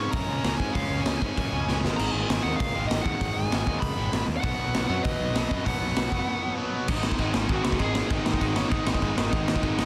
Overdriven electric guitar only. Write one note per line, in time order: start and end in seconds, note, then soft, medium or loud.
0.00 0.43 C#3 medium
0.00 0.45 G#3 medium
0.00 0.43 C#4 loud
0.44 0.73 C#3 medium
0.44 0.76 G#3 medium
0.44 0.75 C#4 medium
0.75 1.20 C#3 medium
0.75 1.22 G#3 medium
0.75 1.20 C#4 loud
1.21 1.66 C#3 medium
1.21 1.68 G#3 medium
1.21 1.66 C#4 medium
1.68 1.82 C#3 medium
1.68 1.85 G#3 medium
1.68 1.83 C#4 medium
1.83 2.28 G#2 loud
1.83 2.28 D#3 loud
1.83 2.30 G#3 loud
2.29 2.74 G#2 medium
2.29 2.74 D#3 medium
2.29 2.73 G#3 medium
2.74 3.03 G#2 medium
2.74 3.04 D#3 medium
2.74 3.04 G#3 medium
3.04 3.48 G#2 loud
3.04 3.50 D#3 loud
3.04 3.51 G#3 loud
3.50 3.95 G#2 medium
3.50 3.96 D#3 medium
3.50 3.96 G#3 medium
3.97 4.28 G#2 medium
3.97 4.27 D#3 medium
3.97 4.27 G#3 medium
4.42 4.90 B2 medium
4.42 4.89 F#3 medium
4.42 4.88 B3 loud
4.89 5.34 B2 medium
4.89 5.34 F#3 medium
4.89 5.37 B3 medium
5.35 5.64 B2 medium
5.35 5.65 F#3 medium
5.35 5.67 B3 medium
5.65 6.11 B2 medium
5.65 6.11 F#3 medium
5.65 6.10 B3 loud
6.11 6.55 B2 medium
6.11 6.56 F#3 medium
6.11 6.57 B3 medium
6.56 6.87 B2 medium
6.56 6.87 F#3 medium
6.56 6.88 B3 medium
6.88 7.04 G#2 loud
6.88 7.03 D#3 loud
6.88 7.04 G#3 loud
7.04 7.19 G#2 medium
7.04 7.18 D#3 medium
7.04 7.20 G#3 medium
7.19 7.35 G#2 loud
7.19 7.34 D#3 loud
7.19 7.34 G#3 loud
7.34 7.48 G#2 medium
7.34 7.48 D#3 loud
7.34 7.49 G#3 loud
7.48 7.65 G#2 loud
7.48 7.63 D#3 loud
7.48 7.64 G#3 loud
7.64 7.79 G#2 medium
7.64 7.79 D#3 medium
7.64 7.79 G#3 medium
7.79 7.95 G#2 medium
7.79 7.94 D#3 loud
7.79 7.94 G#3 loud
7.94 8.10 G#2 medium
7.94 8.10 D#3 loud
7.94 8.11 G#3 loud
8.11 8.26 G#2 loud
8.11 8.25 D#3 loud
8.11 8.25 G#3 loud
8.25 8.40 G#2 medium
8.25 8.40 D#3 medium
8.25 8.41 G#3 medium
8.40 8.57 G#2 medium
8.40 8.55 D#3 loud
8.40 8.56 G#3 loud
8.56 8.70 G#2 medium
8.56 8.70 D#3 loud
8.56 8.71 G#3 loud
8.71 8.87 G#2 loud
8.71 8.86 D#3 loud
8.71 8.86 G#3 loud
8.87 9.01 G#2 medium
8.87 9.01 D#3 medium
8.87 9.02 G#3 medium
9.02 9.17 G#2 loud
9.02 9.17 D#3 loud
9.02 9.17 G#3 loud
9.17 9.31 G#2 medium
9.17 9.31 D#3 loud
9.17 9.32 G#3 loud
9.32 9.47 G#2 loud
9.32 9.47 D#3 loud
9.32 9.47 G#3 loud
9.47 9.62 G#2 medium
9.47 9.62 D#3 medium
9.47 9.62 G#3 medium
9.63 9.78 G#2 loud
9.63 9.78 D#3 loud
9.63 9.77 G#3 loud
9.78 9.85 G#2 medium
9.78 9.85 D#3 loud
9.78 9.85 G#3 loud